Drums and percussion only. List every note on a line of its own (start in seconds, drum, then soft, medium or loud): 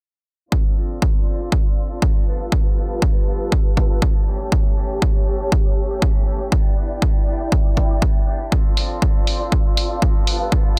0.52 kick loud
1.02 kick loud
1.52 kick loud
2.02 kick loud
2.52 kick loud
3.02 kick loud
3.52 kick loud
3.77 kick medium
4.02 kick loud
4.52 kick loud
5.02 kick loud
5.52 kick loud
6.02 kick loud
6.52 kick loud
7.02 kick loud
7.52 kick loud
7.77 kick medium
8.02 kick loud
8.52 kick loud
8.77 open hi-hat medium
9.02 kick loud
9.27 open hi-hat medium
9.52 kick loud
9.77 open hi-hat loud
10.02 kick loud
10.27 open hi-hat medium
10.52 kick loud